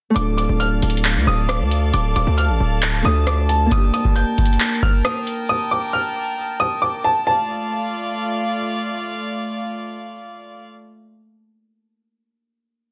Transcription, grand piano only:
0, 0, Header, 1, 2, 480
1, 0, Start_track
1, 0, Tempo, 444444
1, 171, Time_signature, 4, 2, 24, 8
1, 13953, End_track
2, 0, Start_track
2, 0, Title_t, "Grand piano"
2, 0, Program_c, 0, 0
2, 169, Note_on_c, 0, 86, 93
2, 385, Note_off_c, 0, 86, 0
2, 405, Note_on_c, 0, 86, 80
2, 623, Note_off_c, 0, 86, 0
2, 647, Note_on_c, 0, 89, 90
2, 1100, Note_off_c, 0, 89, 0
2, 1375, Note_on_c, 0, 87, 83
2, 1589, Note_off_c, 0, 87, 0
2, 1606, Note_on_c, 0, 86, 79
2, 2059, Note_off_c, 0, 86, 0
2, 2090, Note_on_c, 0, 86, 89
2, 2306, Note_off_c, 0, 86, 0
2, 2331, Note_on_c, 0, 86, 84
2, 2546, Note_off_c, 0, 86, 0
2, 2566, Note_on_c, 0, 89, 76
2, 3245, Note_off_c, 0, 89, 0
2, 3296, Note_on_c, 0, 87, 86
2, 3509, Note_off_c, 0, 87, 0
2, 3536, Note_on_c, 0, 86, 73
2, 3749, Note_off_c, 0, 86, 0
2, 3769, Note_on_c, 0, 81, 78
2, 3986, Note_off_c, 0, 81, 0
2, 4016, Note_on_c, 0, 87, 83
2, 4230, Note_off_c, 0, 87, 0
2, 4250, Note_on_c, 0, 87, 82
2, 4466, Note_off_c, 0, 87, 0
2, 4489, Note_on_c, 0, 91, 81
2, 4941, Note_off_c, 0, 91, 0
2, 5214, Note_on_c, 0, 89, 80
2, 5428, Note_off_c, 0, 89, 0
2, 5452, Note_on_c, 0, 87, 82
2, 5903, Note_off_c, 0, 87, 0
2, 5932, Note_on_c, 0, 87, 93
2, 6147, Note_off_c, 0, 87, 0
2, 6170, Note_on_c, 0, 86, 85
2, 6386, Note_off_c, 0, 86, 0
2, 6407, Note_on_c, 0, 89, 79
2, 7086, Note_off_c, 0, 89, 0
2, 7126, Note_on_c, 0, 87, 87
2, 7344, Note_off_c, 0, 87, 0
2, 7363, Note_on_c, 0, 86, 78
2, 7582, Note_off_c, 0, 86, 0
2, 7607, Note_on_c, 0, 81, 85
2, 7825, Note_off_c, 0, 81, 0
2, 7849, Note_on_c, 0, 81, 86
2, 9247, Note_off_c, 0, 81, 0
2, 13953, End_track
0, 0, End_of_file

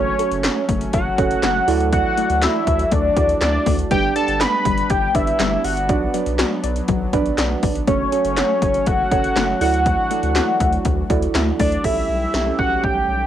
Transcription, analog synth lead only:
0, 0, Header, 1, 2, 480
1, 0, Start_track
1, 0, Tempo, 495868
1, 1864, Time_signature, 4, 2, 24, 8
1, 12843, End_track
2, 0, Start_track
2, 0, Title_t, "Analog synth lead"
2, 0, Program_c, 0, 81
2, 0, Note_on_c, 0, 73, 100
2, 625, Note_off_c, 0, 73, 0
2, 906, Note_on_c, 0, 78, 108
2, 1826, Note_off_c, 0, 78, 0
2, 1865, Note_on_c, 0, 78, 112
2, 2345, Note_on_c, 0, 76, 99
2, 2359, Note_off_c, 0, 78, 0
2, 2824, Note_on_c, 0, 74, 101
2, 2839, Note_off_c, 0, 76, 0
2, 3298, Note_off_c, 0, 74, 0
2, 3304, Note_on_c, 0, 74, 100
2, 3639, Note_off_c, 0, 74, 0
2, 3784, Note_on_c, 0, 79, 115
2, 4007, Note_off_c, 0, 79, 0
2, 4024, Note_on_c, 0, 81, 106
2, 4264, Note_on_c, 0, 83, 115
2, 4278, Note_off_c, 0, 81, 0
2, 4744, Note_on_c, 0, 79, 111
2, 4758, Note_off_c, 0, 83, 0
2, 4984, Note_on_c, 0, 76, 101
2, 4998, Note_off_c, 0, 79, 0
2, 5464, Note_on_c, 0, 78, 100
2, 5479, Note_off_c, 0, 76, 0
2, 5944, Note_off_c, 0, 78, 0
2, 7624, Note_on_c, 0, 73, 108
2, 8585, Note_on_c, 0, 78, 126
2, 8600, Note_off_c, 0, 73, 0
2, 9299, Note_off_c, 0, 78, 0
2, 9305, Note_on_c, 0, 78, 116
2, 10946, Note_off_c, 0, 78, 0
2, 11225, Note_on_c, 0, 74, 95
2, 11464, Note_on_c, 0, 76, 108
2, 11479, Note_off_c, 0, 74, 0
2, 12178, Note_off_c, 0, 76, 0
2, 12184, Note_on_c, 0, 78, 106
2, 12424, Note_on_c, 0, 79, 115
2, 12438, Note_off_c, 0, 78, 0
2, 12843, Note_off_c, 0, 79, 0
2, 12843, End_track
0, 0, End_of_file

